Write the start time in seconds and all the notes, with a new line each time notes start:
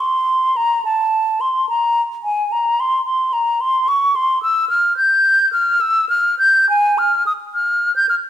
0.00 C6
0.56 A#5
0.85 A5
1.41 C6
1.69 A#5
2.24 G#5
2.52 A#5
2.80 C6
3.06 C6
3.33 A#5
3.61 C6
3.88 C#6
4.16 C6
4.43 E6
4.69 F6
4.97 G6
5.53 F6
5.81 E6
6.09 F6
6.39 G6
6.70 G#5
6.98 F6
7.26 D#6
7.54 F6
7.96 G6
8.09 F6